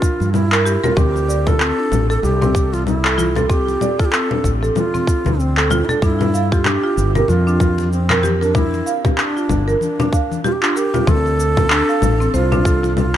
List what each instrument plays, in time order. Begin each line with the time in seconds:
Already playing: marimba D4, bansuri F4
0.02 kick, cabasa
0.20 fretless electric bass G2, high conga, cabasa
0.33 bansuri E4, low conga, cabasa
0.52 marimba A#4, clap, cabasa
0.66 marimba G4, cabasa
0.83 bansuri F4, marimba A#4, low conga, cabasa
0.97 fretless electric bass D2, marimba C4, bansuri G4, kick, low conga, cabasa
1.16 muted conga, cabasa
1.28 marimba D5, cabasa
1.47 marimba F4, bansuri A4, kick, low conga, cabasa
1.60 marimba C4, clap, cabasa
1.79 marimba D4
1.91 fretless electric bass A1, low conga, cabasa
2.10 bansuri A4, marimba A4, cabasa
2.23 fretless electric bass C2, bansuri G4, low conga, cabasa
2.42 marimba C4, low conga, cabasa
2.55 kick, high conga, low conga, cabasa
2.73 bansuri F4, muted conga, cabasa
2.87 bansuri E4, low conga, cabasa
3.05 marimba A4, clap
3.18 marimba F4, muted conga, high conga, cabasa
3.35 bansuri F4, marimba A4, muted conga, low conga, cabasa
3.49 marimba C4, bansuri G4, kick, cabasa
3.68 muted conga, cabasa
3.81 marimba D5, low conga, cabasa
3.99 marimba F4, bansuri A4, kick, cabasa
4.05 bansuri G4
4.11 marimba C4, bansuri A4, clap, cabasa
4.31 marimba D4, low conga
4.44 fretless electric bass A1, kick, low conga, cabasa
4.62 marimba A4, high conga, cabasa
4.76 bansuri F4, high conga, low conga, cabasa
4.94 marimba C4, muted conga, high conga, low conga, cabasa
5.07 kick, cabasa
5.25 fretless electric bass D2, high conga, low conga, cabasa
5.39 bansuri C4, cabasa
5.57 marimba A4, clap
5.70 marimba F4, low conga, cabasa
5.85 bansuri E4
5.89 bansuri D4, marimba A4, low conga, cabasa
6.02 fretless electric bass G2, marimba D4, bansuri E4, kick, cabasa
6.21 muted conga, low conga, cabasa
6.34 marimba F5, cabasa
6.52 bansuri F4, marimba G4, kick, cabasa
6.65 marimba D4, bansuri G4, clap, low conga, cabasa
6.84 marimba F4
6.97 fretless electric bass G1, cabasa
7.15 bansuri G4, marimba A#4, low conga, cabasa
7.28 fretless electric bass F2, bansuri F4, low conga, cabasa
7.47 marimba D4, cabasa
7.60 kick, high conga, low conga, cabasa
7.78 muted conga, cabasa
7.92 bansuri C4, cabasa
8.10 marimba A#4, clap, low conga
8.23 marimba G4, muted conga, high conga, cabasa
8.41 bansuri D4, marimba A#4, muted conga, cabasa
8.55 marimba D4, bansuri E4, kick, low conga, cabasa
8.74 muted conga, cabasa
8.86 marimba F5, cabasa
9.05 marimba G4, kick, muted conga, low conga, cabasa
9.18 marimba D4, bansuri D4, clap, cabasa
9.37 marimba F4, cabasa
9.49 fretless electric bass G1, kick, low conga, cabasa
9.68 marimba A#4, high conga, cabasa
9.81 bansuri D4, high conga, cabasa
9.99 marimba D4, muted conga, high conga, low conga, cabasa
10.13 marimba F5, kick, cabasa
10.32 high conga, cabasa
10.44 bansuri F4, marimba G4, low conga, cabasa
10.52 bansuri G4
10.62 marimba D4, bansuri F4, clap, cabasa
10.76 bansuri G4, marimba A#4, cabasa
10.94 marimba F4, low conga, cabasa
11.07 fretless electric bass D2, marimba C4, bansuri A4, kick, low conga, cabasa
11.26 muted conga, cabasa
11.40 cabasa
11.57 kick, low conga, cabasa
11.70 marimba D4, clap, cabasa
11.89 marimba F5, cabasa
12.02 fretless electric bass A1, low conga, cabasa
12.20 marimba C4, cabasa
12.34 fretless electric bass C2, bansuri F4, marimba C5, low conga, cabasa
12.52 marimba D4, low conga, cabasa
12.65 marimba A4, kick, high conga, low conga, cabasa
12.83 marimba F4, muted conga, cabasa
12.97 bansuri F4, low conga, cabasa